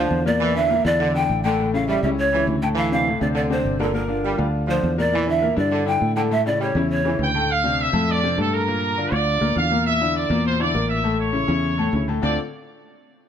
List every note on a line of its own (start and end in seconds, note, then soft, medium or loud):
0.00 0.20 D3 medium
0.00 0.19 F3 medium
0.00 0.20 D4 medium
0.00 0.20 F4 medium
0.00 0.24 C5 loud
0.11 0.79 E2 loud
0.26 0.50 A#2 medium
0.26 0.50 A#3 medium
0.26 0.50 A#4 medium
0.26 0.54 D5 loud
0.40 0.74 E3 loud
0.55 0.67 D3 medium
0.55 0.67 D4 medium
0.55 0.67 E4 medium
0.55 0.87 E5 loud
0.69 0.81 A#2 medium
0.69 0.82 A#3 medium
0.69 0.82 A#4 medium
0.85 1.26 E2 loud
0.85 1.09 D3 medium
0.85 1.09 D4 medium
0.85 1.09 E4 medium
0.85 1.16 D5 loud
1.00 1.23 D3 medium
1.14 1.38 D3 medium
1.14 1.38 D4 medium
1.14 1.39 E4 medium
1.14 1.43 G5 loud
1.29 1.97 A1 loud
1.43 1.56 A2 medium
1.43 1.67 D3 medium
1.43 1.56 A3 medium
1.43 1.56 A4 medium
1.43 1.71 G5 loud
1.60 1.71 A2 medium
1.60 1.71 A3 medium
1.60 1.72 A4 medium
1.74 1.98 C#3 medium
1.74 1.98 C#4 medium
1.74 1.98 E4 medium
1.74 1.88 F5 loud
1.88 2.11 G3 medium
1.88 2.02 E5 medium
2.03 2.44 C#2 loud
2.03 2.28 C#3 medium
2.03 2.28 C#4 medium
2.03 2.28 E4 medium
2.03 2.09 E5 medium
2.19 2.45 C#5 loud
2.33 2.57 C#3 medium
2.33 2.56 E3 medium
2.33 2.57 C#4 medium
2.33 2.58 E4 medium
2.47 3.15 D2 loud
2.62 2.86 A2 medium
2.62 2.86 A3 medium
2.62 2.87 A4 medium
2.62 2.68 G5 loud
2.75 3.09 E3 medium
2.75 2.90 F5 loud
2.92 3.04 C3 medium
2.92 3.04 C4 medium
2.92 3.04 D4 medium
2.92 3.19 F5 loud
3.07 3.19 A2 medium
3.07 3.19 A3 medium
3.07 3.19 A4 medium
3.21 3.62 D2 loud
3.21 3.45 C3 medium
3.21 3.45 C4 medium
3.21 3.45 D4 medium
3.21 3.28 D5 medium
3.34 3.57 D3 medium
3.34 3.42 D5 loud
3.50 3.74 C3 medium
3.50 3.74 C4 medium
3.50 3.75 D4 medium
3.50 3.83 C5 medium
3.65 4.33 G1 loud
3.79 3.91 A#2 medium
3.79 4.03 D3 medium
3.79 3.92 A#3 medium
3.79 3.96 A4 medium
3.79 3.92 A#4 loud
3.94 4.06 A#2 medium
3.94 4.06 A#3 loud
3.94 4.39 A#4 medium
3.94 4.07 A#4 medium
4.08 4.32 D3 medium
4.08 4.33 D4 medium
4.08 4.33 F4 medium
4.24 4.47 G3 medium
4.37 4.80 D2 loud
4.37 4.62 D3 medium
4.37 4.62 D4 medium
4.37 4.63 F4 medium
4.67 4.92 D3 medium
4.67 4.91 F3 medium
4.67 4.92 D4 medium
4.67 4.92 F4 medium
4.67 4.97 C5 loud
4.83 5.51 E2 loud
4.98 5.22 A#2 medium
4.98 5.22 A#3 medium
4.98 5.22 A#4 loud
4.98 5.31 D5 loud
5.13 5.46 E3 medium
5.27 5.39 D3 medium
5.27 5.39 D4 medium
5.27 5.40 E4 medium
5.27 5.57 E5 loud
5.42 5.54 A#2 medium
5.42 5.54 A#3 medium
5.42 5.54 A#4 medium
5.56 5.98 G2 loud
5.56 5.81 D3 medium
5.56 5.81 D4 medium
5.56 5.81 E4 medium
5.56 5.85 D5 loud
5.71 5.94 D3 medium
5.85 6.10 D3 medium
5.85 6.10 D4 medium
5.85 6.11 E4 medium
5.85 6.14 G5 loud
6.01 6.69 A2 medium
6.16 6.28 A2 medium
6.16 6.39 D3 medium
6.16 6.28 A3 medium
6.16 6.28 A4 medium
6.16 6.22 G5 medium
6.31 6.43 A2 medium
6.31 6.43 A3 loud
6.31 6.43 A4 loud
6.31 6.45 E5 loud
6.46 6.70 C#3 medium
6.46 6.70 C#4 medium
6.46 6.70 E4 medium
6.46 6.63 D5 medium
6.60 6.83 G3 medium
6.60 6.90 C#5 medium
6.75 7.16 E2 loud
6.75 6.99 C#3 medium
6.75 7.00 C#4 medium
6.75 7.00 E4 medium
6.90 7.31 C#5 loud
7.04 7.28 C#3 medium
7.04 7.28 E3 medium
7.04 7.29 C#4 medium
7.04 7.29 E4 medium
7.19 7.87 D2 medium
7.19 7.48 G5 loud
7.35 7.46 A2 loud
7.35 7.47 A3 medium
7.35 7.47 A4 medium
7.51 7.79 F5 loud
7.64 7.88 C3 medium
7.64 7.88 C4 medium
7.64 7.88 D4 medium
7.81 8.09 E5 loud
7.93 8.34 F2 loud
7.93 8.17 A2 loud
7.93 8.17 A3 loud
7.93 8.18 A4 loud
8.09 8.38 D5 loud
8.23 8.35 C3 medium
8.23 8.35 C4 medium
8.23 8.35 D4 medium
8.38 9.06 G2 loud
8.38 8.62 A2 medium
8.38 8.62 A3 medium
8.38 8.62 A4 medium
8.38 8.52 A4 medium
8.54 9.12 A#4 loud
8.67 8.92 A#2 medium
8.67 8.92 A#3 loud
8.67 8.92 A#4 medium
8.97 9.09 D3 medium
8.97 9.10 D4 medium
8.97 9.10 F4 medium
9.11 9.39 D2 loud
9.11 9.36 D3 medium
9.11 9.36 D4 medium
9.11 9.36 F4 medium
9.11 9.56 D5 loud
9.41 9.55 D2 medium
9.41 9.53 A#2 medium
9.41 9.53 A#3 medium
9.41 9.53 A#4 loud
9.56 10.24 E2 loud
9.56 9.68 D3 medium
9.56 9.68 D4 medium
9.56 9.68 F4 medium
9.56 9.84 F5 loud
9.71 9.95 A#2 medium
9.71 9.95 A#3 medium
9.71 9.96 A#4 medium
9.86 10.13 E5 loud
10.01 10.25 D3 medium
10.01 10.25 D4 medium
10.01 10.25 E4 medium
10.15 10.43 D5 loud
10.30 10.71 E2 loud
10.30 10.54 A#2 loud
10.30 10.54 A#3 loud
10.30 10.54 A#4 loud
10.45 10.59 C5 loud
10.59 10.72 D3 medium
10.59 10.72 D4 medium
10.59 10.72 E4 medium
10.59 10.89 D5 loud
10.74 11.43 A1 loud
10.74 10.99 A#2 medium
10.74 10.99 A#3 medium
10.74 10.99 A#4 medium
10.88 11.16 E5 medium
11.04 11.28 A2 medium
11.04 11.28 A3 medium
11.04 11.28 A4 medium
11.20 12.04 C#5 medium
11.33 11.45 C#3 medium
11.33 11.45 C#4 medium
11.33 11.45 E4 medium
11.47 11.90 E2 loud
11.47 11.72 C#3 medium
11.47 11.73 C#4 medium
11.47 11.73 E4 medium
11.78 11.90 A2 medium
11.78 11.90 A3 medium
11.78 11.91 A4 loud
11.93 12.19 D2 loud
11.93 12.05 C#3 medium
11.93 12.05 C#4 medium
11.93 12.05 E4 medium
12.08 12.20 A2 medium
12.08 12.20 A3 medium
12.08 12.21 A4 medium
12.22 12.36 D2 loud
12.22 12.36 D3 loud
12.22 12.36 A3 medium
12.22 12.36 C4 medium
12.22 12.36 D4 medium
12.22 12.37 F4 medium
12.22 12.36 A4 loud
12.22 12.37 D5 medium